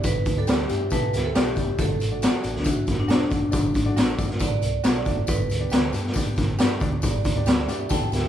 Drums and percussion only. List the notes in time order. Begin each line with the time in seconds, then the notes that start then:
0.03 kick, closed hi-hat, tambourine
0.25 kick, closed hi-hat, tambourine
0.47 snare, closed hi-hat, tambourine
0.69 closed hi-hat, tambourine
0.90 kick, closed hi-hat, tambourine
1.13 snare, closed hi-hat, tambourine
1.35 snare, closed hi-hat, tambourine
1.56 kick, closed hi-hat, tambourine
1.78 kick, closed hi-hat, tambourine
2.00 closed hi-hat, tambourine
2.22 snare, closed hi-hat, tambourine
2.44 closed hi-hat, tambourine
2.56 snare
2.64 kick, closed hi-hat, tambourine
2.87 kick, snare, closed hi-hat, tambourine
3.09 snare, closed hi-hat, tambourine
3.30 kick, closed hi-hat, tambourine
3.52 kick, closed hi-hat, tambourine
3.74 kick, closed hi-hat, tambourine
3.97 snare, closed hi-hat, tambourine
4.18 kick, closed hi-hat, tambourine
4.30 snare
4.39 kick, closed hi-hat, tambourine
4.62 closed hi-hat, tambourine
4.84 snare, closed hi-hat, tambourine
5.05 kick, closed hi-hat, tambourine
5.27 kick, closed hi-hat, tambourine
5.50 closed hi-hat, tambourine
5.70 snare, closed hi-hat, tambourine
5.93 closed hi-hat, tambourine
6.06 snare
6.14 kick, closed hi-hat, tambourine
6.36 kick, snare, closed hi-hat, tambourine
6.59 snare, closed hi-hat, tambourine
6.80 kick, closed hi-hat, tambourine
7.02 kick, closed hi-hat, tambourine
7.25 kick, closed hi-hat, tambourine
7.46 snare, closed hi-hat, tambourine
7.68 closed hi-hat, tambourine
7.89 kick, closed hi-hat, tambourine
8.12 snare, closed hi-hat, tambourine